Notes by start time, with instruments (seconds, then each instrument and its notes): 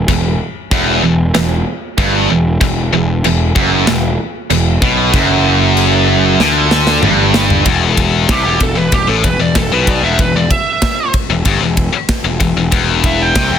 0.08 picked electric bass E1, distorted electric guitar E2, kick, china
0.71 picked electric bass E1, distorted electric guitar E2, kick, china
1.03 picked electric bass E1, distorted electric guitar E2
1.34 picked electric bass E1, distorted electric guitar E2, snare, china
1.98 picked electric bass G1, distorted electric guitar G2, kick, china
2.30 picked electric bass E1, distorted electric guitar E2
2.61 picked electric bass E1, distorted electric guitar E2, kick, china
2.93 picked electric bass E1, distorted electric guitar E2
3.24 picked electric bass E1, distorted electric guitar E2, china
3.56 picked electric bass F#1, distorted electric guitar F#2, kick
3.87 picked electric bass E1, distorted electric guitar E2, snare, china
4.50 picked electric bass E1, distorted electric guitar E2, china
4.82 picked electric bass B1, distorted electric guitar B2, kick
5.13 picked electric bass F#1, distorted electric guitar F#2, kick, china
5.77 china
6.40 picked electric bass D2, distorted electric guitar D3, snare
6.71 snare
6.87 snare
7.02 picked electric bass G1, distorted electric guitar G2, mid tom
7.34 snare
7.50 floor tom
7.65 picked electric bass E1, distorted electric guitar E2, kick, ride
7.97 kick, ride
8.29 picked electric bass C2, distorted electric guitar C3, lead electric guitar G4, kick, snare, ride
8.45 picked electric bass E1, distorted electric guitar E2
8.60 picked electric bass E1, distorted electric guitar E2, lead electric guitar A4, kick, ride
8.76 picked electric bass E1, distorted electric guitar E2, lead electric guitar B4
8.92 picked electric bass E1, distorted electric guitar E2, lead electric guitar G4, kick, ride
9.08 picked electric bass A1, distorted electric guitar A2, lead electric guitar A4
9.24 picked electric bass E1, distorted electric guitar E2, lead electric guitar B4, kick, ride
9.39 picked electric bass E1, distorted electric guitar E2, lead electric guitar D5
9.55 picked electric bass E1, distorted electric guitar E2, lead electric guitar A4, kick, snare, ride
9.70 picked electric bass B1, distorted electric guitar B2, lead electric guitar B4
9.87 lead electric guitar D5, kick, ride
10.03 picked electric bass E1, distorted electric guitar E2, lead electric guitar E5
10.19 picked electric bass E1, distorted electric guitar E2, lead electric guitar B4, kick, ride
10.35 picked electric bass E1, distorted electric guitar E2, lead electric guitar D5
10.51 lead electric guitar E5, kick, ride
10.82 kick, snare, ride
11.14 kick, ride
11.30 picked electric bass E1, distorted electric guitar E2
11.45 picked electric bass G1, distorted electric guitar G2, kick, ride
11.61 picked electric bass E1, distorted electric guitar E2
11.77 kick, ride
11.92 muted picked electric bass stroke, muted distorted electric guitar stroke
12.09 kick, snare, ride
12.24 picked electric bass E1, distorted electric guitar E2
12.40 picked electric bass E1, distorted electric guitar E2, kick, ride
12.55 picked electric bass E1, distorted electric guitar E2
12.72 picked electric bass E1, distorted electric guitar E2, kick, ride
13.04 lead electric guitar E5, kick, ride
13.22 lead electric guitar G5
13.35 picked electric bass C2, distorted electric guitar C3, kick, snare, ride
13.51 picked electric bass E1, distorted electric guitar E2